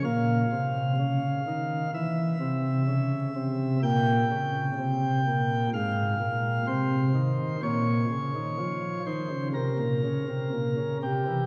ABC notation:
X:1
M:4/4
L:1/16
Q:1/4=63
K:Cphr
V:1 name="Pipe organ"
f8 =e8 | g8 f4 c4 | d6 c2 B6 G2 |]
V:2 name="Pipe organ" clef=bass
B,,2 C,2 D,2 E,2 =E,2 C,2 D,2 C,2 | B,,2 D,2 C,2 B,,2 A,,2 B,,2 C,2 E,2 | B,,2 D, E, F,2 E, D, C, B,, D, C, B,, D, C, =E, |]